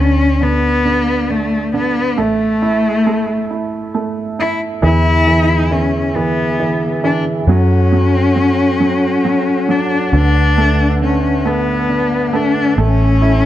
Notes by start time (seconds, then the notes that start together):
Already playing: D2 D3
0.00 C#4
0.41 D3 B3
0.85 D3
1.30 D3 A3
1.74 D3 B3
2.17 A1 A3
2.62 E4
3.06 A3
3.51 E4
3.94 A3
4.39 E4
4.82 E2 D3 E3 E4 G#4 E5
5.27 E3
5.71 E3 C#4
6.16 E3 B3
6.60 E3
7.04 E3 D4
7.47 F#2 F#3 C#4 A4 C#5 F#5
7.92 F#3
8.36 F#3
8.80 F#3
9.25 F#3
9.69 F#3 D4
10.13 D2 D3 D4 B4
10.58 A3
11.02 D3 C#4
11.45 A3 B3
11.89 D3
12.33 A3 D4
12.78 A1 A3 C#4 A4 G#5
13.21 E4